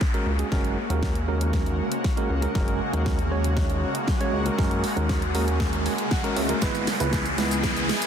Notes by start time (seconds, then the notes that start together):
Already playing: C#3 G#3 A#3 F#4, downlifter, riser
0.01 kick, snare
0.14 G#3 C#4 F#4 A#4, closed hi-hat
0.27 C#2
0.39 G#3 C#4 F#4 G#4, closed hi-hat
0.52 F#1 G#3 C#4 F#4 A#4, kick, snare
0.64 closed hi-hat
0.90 D#2 G#3 C#4 F#4 A#4, closed hi-hat
1.03 kick, snare
1.15 closed hi-hat
1.28 G#3 C#4 F#4 A#4
1.41 closed hi-hat
1.53 kick, snare
1.66 closed hi-hat
1.92 closed hi-hat
2.04 kick, snare
2.17 G#3 C#4 F#4 A#4, closed hi-hat
2.30 C#2
2.42 G#3 C#4 F#4 A#4, closed hi-hat
2.55 F#1 G#3 C#4 F#4 A#4, kick, snare
2.68 closed hi-hat
2.93 D#2 G#3 C#4 F#4 A#4, closed hi-hat
3.06 kick, snare
3.19 closed hi-hat
3.31 G#3 C#4 F#4 C#5
3.44 closed hi-hat
3.57 kick, snare
3.70 closed hi-hat
3.95 closed hi-hat
4.08 kick, snare
4.20 G#3 C#4 F#4 C#5, closed hi-hat
4.33 C#2
4.46 G#3 C#4 F#4 A#4, closed hi-hat
4.58 F#1 G#3 C#4 F#4 A#4, kick, snare
4.71 closed hi-hat
4.84 open hi-hat
4.96 D#2 G#3 C#4 F#4 A#4, closed hi-hat
5.09 kick, snare
5.22 closed hi-hat
5.34 G#3 C#4 F#4 A#4, open hi-hat
5.48 closed hi-hat
5.60 kick, snare
5.73 closed hi-hat
5.86 G#5, open hi-hat
5.98 closed hi-hat
6.11 F#5, kick, snare
6.24 G#3 C#4 F#4 A#4, closed hi-hat
6.36 C#2 E5, open hi-hat
6.49 G#3 C#4 F#4 A#4, closed hi-hat
6.62 G#1 E3 G#3 B3 E4 G#4 B4, kick, snare, shaker
6.75 closed hi-hat, shaker
6.87 snare, open hi-hat, shaker
7.00 C#2 G#3 B3 E4 B4, closed hi-hat, shaker
7.13 kick, snare, shaker
7.26 closed hi-hat, shaker
7.38 G#3 B3 E4 B4, snare, open hi-hat, shaker
7.51 closed hi-hat, shaker
7.64 kick, snare, shaker
7.77 closed hi-hat, shaker
7.89 snare, open hi-hat, shaker
8.02 closed hi-hat, shaker